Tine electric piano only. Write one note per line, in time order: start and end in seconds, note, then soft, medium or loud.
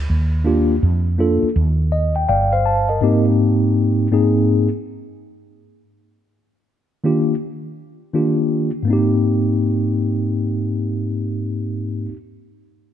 0.44 0.74 A#3 medium
0.44 0.74 D4 medium
0.44 0.75 F4 medium
0.44 0.75 G4 medium
1.18 1.47 A#3 medium
1.18 1.48 D4 medium
1.18 1.48 F4 medium
1.18 1.48 A4 medium
1.92 2.14 D#5 medium
2.16 2.27 G5 medium
2.29 2.51 D5 soft
2.29 2.51 F5 medium
2.29 2.51 G5 medium
2.53 2.88 C5 medium
2.53 2.87 F5 medium
2.66 3.00 A5 medium
2.89 3.24 A#4 soft
2.89 3.24 D#5 medium
3.01 4.06 G#2 medium
3.01 4.06 A#3 medium
3.01 4.07 C4 medium
3.01 4.07 D#4 medium
3.01 4.07 G4 medium
4.11 4.67 G#2 medium
4.11 4.67 A#3 medium
4.11 4.67 C4 medium
4.11 4.68 D#4 medium
4.11 4.68 G#4 medium
7.04 7.33 D#3 medium
7.04 7.33 A#3 medium
7.04 7.33 D4 medium
7.04 7.34 F4 medium
7.04 7.34 G4 medium
8.13 8.69 D#3 medium
8.13 8.69 A#3 medium
8.13 8.70 D4 medium
8.13 8.70 F4 medium
8.13 8.70 G4 medium
8.83 12.06 G#2 medium
8.83 12.08 A#3 medium
8.88 12.11 C4 medium
8.88 12.13 D#4 medium
8.93 12.16 G4 medium